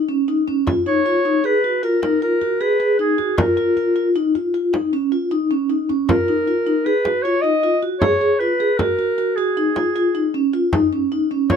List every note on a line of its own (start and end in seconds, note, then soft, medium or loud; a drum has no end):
0.09 0.24 C#4 medium
0.28 0.44 D#4 medium
0.48 0.63 C#4 medium
0.48 frame drum soft
0.67 0.83 F4 medium
0.67 frame drum medium
0.86 1.02 D#4 medium
0.86 1.47 C#5 medium
1.06 1.21 F4 medium
1.25 1.41 D#4 medium
1.44 1.60 G#4 medium
1.44 1.82 B4 medium
1.64 1.80 F#4 medium
1.83 1.99 F4 medium
1.83 2.01 A#4 medium
2.02 2.18 D#4 medium
2.02 2.20 A#4 medium
2.02 frame drum soft
2.22 2.38 F4 medium
2.22 2.63 A#4 medium
2.41 2.57 F#4 medium
2.41 frame drum soft
2.61 2.76 G#4 medium
2.61 2.99 B4 medium
2.80 2.96 G#4 medium
2.99 3.15 D#4 medium
2.99 3.36 G#4 medium
3.18 3.34 F#4 medium
3.18 frame drum soft
3.38 3.53 F4 medium
3.38 4.12 A#4 medium
3.38 frame drum medium
3.57 3.73 F4 medium
3.57 frame drum soft
3.77 3.93 F4 medium
3.77 frame drum soft
3.96 4.12 F4 medium
4.16 4.31 D#4 medium
4.35 4.51 F4 medium
4.35 frame drum soft
4.54 4.70 F4 medium
4.73 4.89 D#4 medium
4.73 frame drum soft
4.93 5.09 C#4 medium
5.12 5.28 F4 medium
5.31 5.47 D#4 medium
5.51 5.66 C#4 medium
5.70 5.85 D#4 medium
5.89 6.05 C#4 medium
5.89 frame drum soft
6.09 6.24 F4 medium
6.09 6.87 A#4 medium
6.09 frame drum medium
6.28 6.44 D#4 medium
6.28 frame drum soft
6.48 6.63 F4 medium
6.67 6.82 D#4 medium
6.85 7.02 G#4 medium
6.85 7.24 B4 medium
7.05 7.21 F#4 medium
7.05 frame drum soft
7.22 7.41 F4 medium
7.22 7.43 C#5 medium
7.42 7.60 D#4 medium
7.42 7.82 D#5 medium
7.63 7.79 F4 medium
7.82 7.98 F#4 medium
7.99 8.18 G#4 medium
7.99 8.41 C#5 medium
7.99 frame drum medium
8.21 8.37 G#4 medium
8.39 8.56 F4 medium
8.39 8.79 B4 medium
8.60 8.76 G#4 medium
8.78 8.95 F#4 medium
8.78 9.38 A#4 medium
8.78 frame drum soft
8.98 9.14 F#4 medium
8.98 frame drum soft
9.18 9.34 F#4 medium
9.36 9.53 F#4 medium
9.36 10.53 G#4 medium
9.57 9.73 D#4 medium
9.76 9.92 F4 medium
9.76 frame drum soft
9.96 10.11 F4 medium
10.15 10.31 D#4 medium
10.34 10.50 C#4 medium
10.53 10.69 F4 medium
10.73 10.89 D#4 medium
10.73 frame drum medium
10.93 11.08 C#4 medium
11.12 11.27 D#4 medium
11.31 11.47 C#4 medium
11.50 11.56 F4 medium
11.50 11.56 C#5 medium
11.50 frame drum medium